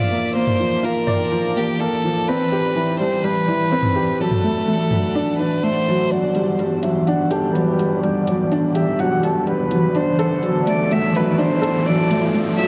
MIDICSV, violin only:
0, 0, Header, 1, 2, 480
1, 0, Start_track
1, 0, Key_signature, 1, "major"
1, 0, Tempo, 480000
1, 354, Time_signature, 4, 2, 24, 8
1, 12676, End_track
2, 0, Start_track
2, 0, Title_t, "Violin"
2, 0, Program_c, 0, 40
2, 0, Note_on_c, 0, 74, 89
2, 355, Note_off_c, 0, 74, 0
2, 361, Note_on_c, 0, 72, 88
2, 845, Note_on_c, 0, 70, 84
2, 860, Note_off_c, 0, 72, 0
2, 1571, Note_on_c, 0, 67, 75
2, 1586, Note_off_c, 0, 70, 0
2, 1801, Note_on_c, 0, 69, 85
2, 1816, Note_off_c, 0, 67, 0
2, 2280, Note_on_c, 0, 71, 90
2, 2294, Note_off_c, 0, 69, 0
2, 2993, Note_off_c, 0, 71, 0
2, 2999, Note_on_c, 0, 72, 79
2, 3236, Note_on_c, 0, 71, 92
2, 3252, Note_off_c, 0, 72, 0
2, 4204, Note_on_c, 0, 69, 82
2, 4219, Note_off_c, 0, 71, 0
2, 5383, Note_off_c, 0, 69, 0
2, 5389, Note_on_c, 0, 71, 70
2, 5636, Note_on_c, 0, 72, 86
2, 5651, Note_off_c, 0, 71, 0
2, 6113, Note_on_c, 0, 74, 92
2, 6128, Note_off_c, 0, 72, 0
2, 6594, Note_off_c, 0, 74, 0
2, 6831, Note_on_c, 0, 76, 88
2, 7072, Note_on_c, 0, 78, 98
2, 7087, Note_off_c, 0, 76, 0
2, 7309, Note_on_c, 0, 69, 82
2, 7324, Note_off_c, 0, 78, 0
2, 7545, Note_on_c, 0, 71, 84
2, 7560, Note_off_c, 0, 69, 0
2, 8030, Note_off_c, 0, 71, 0
2, 8039, Note_on_c, 0, 74, 85
2, 8483, Note_off_c, 0, 74, 0
2, 8758, Note_on_c, 0, 76, 92
2, 8995, Note_on_c, 0, 78, 106
2, 9010, Note_off_c, 0, 76, 0
2, 9244, Note_on_c, 0, 69, 84
2, 9259, Note_off_c, 0, 78, 0
2, 9479, Note_off_c, 0, 69, 0
2, 9484, Note_on_c, 0, 71, 88
2, 9969, Note_on_c, 0, 72, 84
2, 9984, Note_off_c, 0, 71, 0
2, 10442, Note_off_c, 0, 72, 0
2, 10684, Note_on_c, 0, 74, 93
2, 10924, Note_on_c, 0, 76, 105
2, 10938, Note_off_c, 0, 74, 0
2, 11163, Note_on_c, 0, 71, 88
2, 11178, Note_off_c, 0, 76, 0
2, 11390, Note_on_c, 0, 72, 87
2, 11405, Note_off_c, 0, 71, 0
2, 11863, Note_on_c, 0, 74, 89
2, 11878, Note_off_c, 0, 72, 0
2, 12349, Note_off_c, 0, 74, 0
2, 12584, Note_on_c, 0, 76, 95
2, 12676, Note_off_c, 0, 76, 0
2, 12676, End_track
0, 0, End_of_file